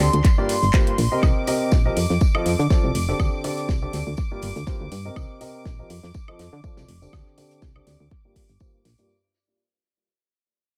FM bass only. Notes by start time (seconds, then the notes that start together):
0.13 D2
0.63 G1
0.98 A#1
1.23 C2
1.72 A#1
1.97 F2
2.10 F2
2.46 F2
2.59 D3
2.84 C2
2.95 F1
3.20 D2
3.69 C2
3.93 D2
4.07 D2
4.42 G1
4.56 D2
4.81 D2
4.92 G2
5.16 C2
5.66 A#1
5.90 F2
6.03 F2
6.39 F2
6.53 D3
6.77 C2
6.88 F1
7.13 D2
7.62 C2
7.87 D2
8.00 D2
8.49 G1
8.85 A#1